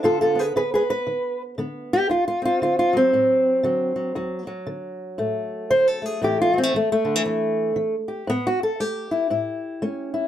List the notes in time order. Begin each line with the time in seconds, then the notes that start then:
0.03 G#2 D3 B3 F4 A4
0.21 F4 A4
0.35 B3 G#4
0.40 B4
0.56 D3 G#4 B4
0.74 G#4 B4
0.90 B4
1.07 D3
1.58 D3 B3
1.93 G4
2.09 D2 F4
2.28 F4
2.42 C4 F4
2.62 D3 F4
2.79 F4
2.93 F#3 C4
3.13 A2 F#3
3.63 D3 F#3
3.96 F#3
4.15 D2 F#3
4.47 F#3
4.67 D3
5.18 A2 A3
5.70 D3 C5
5.88 A4
6.02 A3 G#4
6.21 A2 E3 A3 G4
6.42 F4
6.53 F#3
6.58 C4
6.63 A3
6.74 E3 A3
6.92 A3
7.05 D3
7.16 E3
7.25 E2 E3
7.76 E3
8.08 G4
8.27 A2 B3
8.47 F#4
8.63 A4
8.80 A3 G4
9.11 E4
9.30 A2 E4
9.82 A3 C#4
10.14 E4